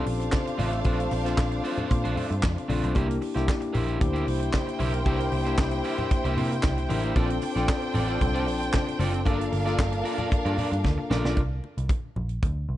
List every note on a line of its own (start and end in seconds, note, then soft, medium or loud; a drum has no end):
0.00 0.85 C4 medium
0.00 2.97 C#4 medium
0.00 0.85 D4 medium
0.00 2.92 D4 medium
0.00 0.86 F4 medium
0.00 2.96 G4 medium
0.00 0.86 A4 loud
0.00 2.92 C5 medium
0.00 2.92 F5 medium
0.06 0.28 A#1 medium
0.06 muted clean electric guitar stroke soft
0.06 open hi-hat medium
0.20 muted clean electric guitar stroke soft
0.20 closed hi-hat medium
0.32 kick loud
0.32 snare loud
0.32 clap medium
0.32 high conga medium
0.46 muted clean electric guitar stroke medium
0.46 closed hi-hat soft
0.58 0.81 A1 loud
0.58 0.79 A3 medium
0.58 0.72 D4 medium
0.58 0.72 F4 medium
0.58 0.71 C5 loud
0.58 open hi-hat medium
0.58 high conga medium
0.72 muted clean electric guitar stroke soft
0.72 closed hi-hat medium
0.85 1.07 A#1 loud
0.85 1.06 A3 medium
0.85 1.18 C4 medium
0.85 1.18 D4 medium
0.85 0.99 D4 medium
0.85 1.19 F4 medium
0.85 0.99 F4 medium
0.85 1.19 A4 medium
0.85 0.98 C5 medium
0.85 kick loud
0.85 closed hi-hat medium
0.85 muted conga medium
0.99 muted clean electric guitar stroke medium
0.99 closed hi-hat soft
1.11 1.34 A#1 loud
1.11 muted clean electric guitar stroke soft
1.11 open hi-hat medium
1.11 muted conga soft
1.25 1.36 A3 soft
1.25 2.12 C4 medium
1.25 2.12 D4 medium
1.25 1.37 D4 soft
1.25 1.37 F4 medium
1.25 2.12 F4 medium
1.25 2.13 A4 loud
1.25 1.37 C5 medium
1.25 snare soft
1.25 closed hi-hat soft
1.37 1.60 A#1 medium
1.37 muted clean electric guitar stroke soft
1.37 kick loud
1.37 snare loud
1.37 clap loud
1.37 high conga medium
1.52 muted clean electric guitar stroke soft
1.52 closed hi-hat soft
1.64 1.78 A3 medium
1.64 1.77 D4 medium
1.64 1.77 F4 loud
1.64 1.76 C5 loud
1.64 open hi-hat medium
1.78 1.89 A3 medium
1.78 1.89 D4 medium
1.78 1.90 F4 medium
1.78 1.90 C5 medium
1.78 closed hi-hat soft
1.78 low conga medium
1.90 2.02 A#2 loud
1.90 muted clean electric guitar stroke soft
1.90 kick loud
1.90 closed hi-hat medium
1.90 muted conga medium
2.04 2.15 A#1 medium
2.04 2.15 A3 medium
2.04 2.15 D4 medium
2.04 2.16 F4 medium
2.04 2.16 C5 loud
2.04 closed hi-hat soft
2.16 2.33 A3 medium
2.16 2.30 D4 medium
2.16 2.29 F4 medium
2.16 2.29 C5 medium
2.16 open hi-hat medium
2.16 low conga medium
2.30 2.41 G2 medium
2.30 muted clean electric guitar stroke soft
2.30 closed hi-hat medium
2.42 2.55 F2 loud
2.42 muted clean electric guitar stroke soft
2.42 kick loud
2.42 snare medium
2.42 clap medium
2.42 high conga medium
2.56 muted clean electric guitar stroke medium
2.56 closed hi-hat soft
2.68 2.81 A#1 loud
2.68 2.83 A3 medium
2.68 2.91 C4 medium
2.68 2.91 D4 medium
2.68 2.82 D4 loud
2.68 2.82 F4 loud
2.68 2.92 F4 medium
2.68 2.92 A4 medium
2.68 2.81 C5 medium
2.68 open hi-hat medium
2.68 high conga medium
2.82 2.94 B1 loud
2.82 2.94 A3 medium
2.82 2.95 D4 medium
2.82 2.95 F4 medium
2.82 2.95 C5 medium
2.82 closed hi-hat soft
2.95 3.18 C2 loud
2.95 3.28 A#3 medium
2.95 3.16 A#3 medium
2.95 3.28 D4 medium
2.95 3.29 E4 medium
2.95 3.08 E4 medium
2.95 3.29 G4 loud
2.95 3.08 G4 loud
2.95 3.07 C5 loud
2.95 kick loud
2.95 closed hi-hat medium
2.95 muted conga medium
3.08 muted clean electric guitar stroke soft
3.08 closed hi-hat medium
3.21 muted clean electric guitar stroke soft
3.21 open hi-hat medium
3.21 muted conga soft
3.35 3.46 C2 medium
3.35 3.90 A#3 medium
3.35 3.46 A#3 soft
3.35 3.90 D4 medium
3.35 3.46 E4 soft
3.35 3.90 E4 medium
3.35 3.47 G4 medium
3.35 3.91 G4 loud
3.35 3.47 C5 medium
3.35 snare soft
3.35 closed hi-hat soft
3.47 muted clean electric guitar stroke medium
3.47 kick loud
3.47 snare loud
3.47 clap medium
3.47 high conga medium
3.61 muted clean electric guitar stroke soft
3.61 closed hi-hat soft
3.73 3.97 A#1 medium
3.73 3.87 A#3 loud
3.73 3.86 E4 loud
3.73 3.86 G4 medium
3.73 3.85 C5 loud
3.73 open hi-hat medium
3.73 low conga medium
3.86 3.98 A#3 medium
3.86 3.99 E4 medium
3.86 3.99 G4 medium
3.86 3.99 C5 medium
3.86 closed hi-hat soft
4.00 4.23 D2 loud
4.00 4.88 A#3 medium
4.00 4.88 D4 medium
4.00 4.89 E4 medium
4.00 7.12 E4 medium
4.00 4.89 G4 loud
4.00 7.12 C5 medium
4.00 7.12 G5 medium
4.00 muted clean electric guitar stroke soft
4.00 kick loud
4.00 closed hi-hat medium
4.00 muted conga medium
4.00 low conga medium
4.13 4.25 A#3 medium
4.13 4.26 E4 medium
4.13 4.26 G4 medium
4.13 4.26 C5 medium
4.13 closed hi-hat soft
4.26 4.49 C2 medium
4.26 muted clean electric guitar stroke soft
4.26 open hi-hat medium
4.40 muted clean electric guitar stroke soft
4.40 closed hi-hat medium
4.53 kick loud
4.53 snare loud
4.53 clap medium
4.53 high conga medium
4.67 muted clean electric guitar stroke medium
4.67 closed hi-hat soft
4.79 5.02 B1 medium
4.79 5.00 A#3 medium
4.79 4.93 E4 loud
4.79 4.93 G4 loud
4.79 4.92 C5 loud
4.79 open hi-hat medium
4.79 high conga medium
4.93 muted clean electric guitar stroke medium
4.93 closed hi-hat medium
5.05 5.28 C2 loud
5.05 5.38 A#3 medium
5.05 5.27 A#3 loud
5.05 5.39 D4 medium
5.05 5.39 E4 medium
5.05 5.20 E4 loud
5.05 5.39 G4 loud
5.05 5.19 G4 loud
5.05 5.18 C5 loud
5.05 kick loud
5.05 closed hi-hat medium
5.05 muted conga medium
5.19 muted clean electric guitar stroke soft
5.19 closed hi-hat medium
5.32 5.54 C2 medium
5.32 muted clean electric guitar stroke soft
5.32 open hi-hat medium
5.45 6.32 A#3 medium
5.45 5.57 A#3 soft
5.45 6.33 D4 medium
5.45 5.57 E4 soft
5.45 6.33 E4 medium
5.45 5.58 G4 medium
5.45 6.33 G4 loud
5.45 5.58 C5 medium
5.45 closed hi-hat soft
5.58 5.80 C2 medium
5.58 muted clean electric guitar stroke medium
5.58 kick loud
5.58 snare loud
5.58 clap medium
5.58 high conga medium
5.71 muted clean electric guitar stroke soft
5.71 closed hi-hat soft
5.84 5.98 A#3 loud
5.84 5.98 E4 loud
5.84 5.97 G4 loud
5.84 5.96 C5 loud
5.84 open hi-hat medium
5.98 6.10 A#3 medium
5.98 6.10 E4 medium
5.98 6.10 G4 medium
5.98 6.11 C5 medium
5.98 closed hi-hat soft
5.98 low conga medium
6.11 muted clean electric guitar stroke soft
6.11 kick loud
6.11 closed hi-hat medium
6.11 muted conga medium
6.24 6.35 C2 loud
6.24 6.36 A#3 medium
6.24 6.36 E4 medium
6.24 6.37 G4 medium
6.24 6.37 C5 medium
6.24 closed hi-hat soft
6.37 6.59 C3 loud
6.37 6.54 A#3 medium
6.37 6.51 E4 medium
6.37 6.50 G4 medium
6.37 6.50 C5 medium
6.37 open hi-hat medium
6.37 low conga medium
6.51 muted clean electric guitar stroke soft
6.51 closed hi-hat medium
6.63 6.86 C2 loud
6.63 muted clean electric guitar stroke soft
6.63 kick loud
6.63 snare loud
6.63 clap medium
6.63 high conga medium
6.77 muted clean electric guitar stroke soft
6.77 closed hi-hat soft
6.89 7.12 A1 medium
6.89 7.04 A#3 loud
6.89 7.12 A#3 medium
6.89 7.12 D4 medium
6.89 7.03 E4 loud
6.89 7.12 E4 medium
6.89 7.03 G4 loud
6.89 7.12 A#4 medium
6.89 7.02 C5 loud
6.89 open hi-hat medium
6.89 high conga medium
7.03 7.15 A#3 medium
7.03 7.16 E4 medium
7.03 7.16 G4 medium
7.03 7.17 C5 medium
7.03 closed hi-hat soft
7.15 7.38 A#1 loud
7.15 7.37 C4 medium
7.15 7.49 C4 loud
7.15 7.49 D4 medium
7.15 9.23 D4 medium
7.15 7.30 F4 medium
7.15 7.50 F4 medium
7.15 7.29 A4 loud
7.15 7.50 A4 loud
7.15 9.23 C5 medium
7.15 7.29 D5 loud
7.15 9.23 G5 loud
7.15 kick loud
7.15 closed hi-hat soft
7.15 muted conga medium
7.30 muted clean electric guitar stroke medium
7.30 closed hi-hat soft
7.42 muted clean electric guitar stroke soft
7.42 open hi-hat medium
7.42 muted conga soft
7.56 7.66 A#1 loud
7.56 8.10 C4 loud
7.56 7.67 C4 soft
7.56 8.11 D4 medium
7.56 7.67 F4 soft
7.56 8.11 F4 medium
7.56 7.67 A4 medium
7.56 8.11 A4 loud
7.56 7.68 D5 medium
7.56 snare soft
7.56 closed hi-hat soft
7.68 muted clean electric guitar stroke soft
7.68 kick loud
7.68 snare loud
7.68 clap loud
7.68 high conga medium
7.82 muted clean electric guitar stroke soft
7.82 closed hi-hat soft
7.94 8.17 A1 loud
7.94 8.08 C4 medium
7.94 8.08 F4 medium
7.94 8.07 A4 medium
7.94 8.07 D5 loud
7.94 open hi-hat medium
7.94 low conga medium
8.08 8.19 C4 medium
8.08 8.19 F4 medium
8.08 8.20 A4 medium
8.08 8.20 D5 medium
8.08 closed hi-hat soft
8.20 8.47 C2 loud
8.20 9.08 C4 medium
8.20 9.09 D4 medium
8.20 9.09 F4 medium
8.20 9.09 A4 medium
8.20 muted clean electric guitar stroke soft
8.20 kick loud
8.20 closed hi-hat medium
8.20 muted conga medium
8.20 low conga medium
8.34 8.45 C4 medium
8.34 8.46 F4 medium
8.34 8.46 A4 medium
8.34 8.46 D5 medium
8.34 closed hi-hat soft
8.46 8.69 A#1 medium
8.46 muted clean electric guitar stroke soft
8.46 open hi-hat medium
8.60 muted clean electric guitar stroke soft
8.60 closed hi-hat medium
8.73 kick loud
8.73 snare loud
8.73 clap medium
8.73 high conga medium
8.87 muted clean electric guitar stroke soft
8.87 closed hi-hat soft
8.99 9.26 F#1 medium
8.99 9.21 C4 loud
8.99 9.14 F4 loud
8.99 9.13 A4 loud
8.99 9.12 D5 loud
8.99 open hi-hat medium
8.99 high conga medium
9.14 muted clean electric guitar stroke soft
9.14 closed hi-hat soft
9.25 9.48 G1 loud
9.25 9.59 A#3 medium
9.25 9.47 D4 medium
9.25 9.59 D4 medium
9.25 11.33 D4 medium
9.25 9.39 F4 medium
9.25 9.60 F4 medium
9.25 9.60 A4 loud
9.25 9.39 A#4 medium
9.25 11.33 A#4 medium
9.25 9.38 D5 loud
9.25 11.33 F5 loud
9.25 kick loud
9.25 closed hi-hat medium
9.25 muted conga medium
9.39 muted clean electric guitar stroke soft
9.39 closed hi-hat medium
9.52 9.75 G1 loud
9.52 muted clean electric guitar stroke soft
9.52 open hi-hat medium
9.65 10.53 A#3 medium
9.65 10.54 D4 medium
9.65 9.77 D4 soft
9.65 9.78 F4 medium
9.65 10.54 F4 medium
9.65 10.54 A4 loud
9.65 9.78 A#4 medium
9.65 9.78 D5 medium
9.65 snare soft
9.65 closed hi-hat soft
9.78 10.01 G1 medium
9.78 muted clean electric guitar stroke soft
9.78 kick loud
9.78 snare loud
9.78 clap loud
9.78 high conga medium
9.92 muted clean electric guitar stroke medium
9.92 closed hi-hat soft
10.04 10.18 D4 medium
10.04 10.18 F4 medium
10.04 10.17 A#4 medium
10.04 10.17 D5 medium
10.04 open hi-hat medium
10.18 10.29 D4 medium
10.18 10.30 F4 medium
10.18 10.30 A#4 medium
10.18 10.30 D5 medium
10.18 closed hi-hat soft
10.18 low conga medium
10.30 muted clean electric guitar stroke soft
10.30 kick loud
10.30 closed hi-hat medium
10.30 muted conga medium
10.45 10.56 G2 loud
10.45 10.56 D4 medium
10.45 10.56 F4 medium
10.45 10.57 A#4 medium
10.45 10.58 D5 medium
10.45 closed hi-hat soft
10.57 10.74 D4 medium
10.57 10.72 F4 medium
10.57 10.71 A#4 medium
10.57 10.70 D5 medium
10.57 open hi-hat medium
10.57 low conga medium
10.72 10.82 G2 medium
10.72 muted clean electric guitar stroke soft
10.72 closed hi-hat medium
10.84 10.96 D2 medium
10.84 muted clean electric guitar stroke soft
10.84 kick loud
10.84 snare medium
10.84 high conga medium
10.98 muted clean electric guitar stroke medium
11.10 11.22 A#1 medium
11.10 11.32 A#3 medium
11.10 11.25 D4 medium
11.10 11.33 D4 medium
11.10 11.24 F4 loud
11.10 11.33 F4 medium
11.10 11.33 A4 medium
11.10 11.24 A#4 medium
11.10 11.23 D5 medium
11.10 snare loud
11.10 high conga medium
11.24 11.35 B1 medium
11.24 11.41 D4 medium
11.24 11.41 F4 medium
11.24 11.40 A#4 medium
11.24 11.40 D5 medium
11.24 snare medium
11.37 11.59 C2 medium
11.37 kick medium
11.37 closed hi-hat soft
11.37 muted conga medium
11.64 muted conga soft
11.78 11.88 C2 medium
11.78 closed hi-hat soft
11.89 kick loud
11.89 closed hi-hat medium
11.89 high conga medium
12.16 12.38 A#1 medium
12.16 low conga medium
12.29 closed hi-hat soft
12.43 12.65 D2 medium
12.43 kick loud
12.43 closed hi-hat medium
12.43 muted conga soft
12.43 low conga medium
12.69 12.77 C2 medium